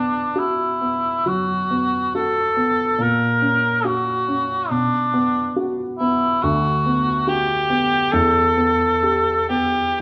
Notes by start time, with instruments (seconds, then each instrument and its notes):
Already playing: grand piano B2 B3, cor anglais D4
0.36 cor anglais E4, grand piano F#4
0.81 grand piano B3
1.26 grand piano F#3, cor anglais F#4
1.70 grand piano B3
2.15 grand piano F#4, cor anglais A4
2.56 grand piano B3
2.98 grand piano A#2, cor anglais A#4
3.41 grand piano C#4
3.85 grand piano F#4, cor anglais F#4
4.28 grand piano C#4
4.70 grand piano B2, cor anglais D4
5.14 grand piano B3
5.56 grand piano F#4
5.99 grand piano B3, cor anglais E4
6.42 grand piano D2, cor anglais F#4
6.86 grand piano B3
7.27 grand piano F#4, cor anglais G4
7.70 grand piano B3
8.12 grand piano E2, cor anglais A4
8.57 grand piano B3
9.03 grand piano G4
9.49 grand piano B3, cor anglais G4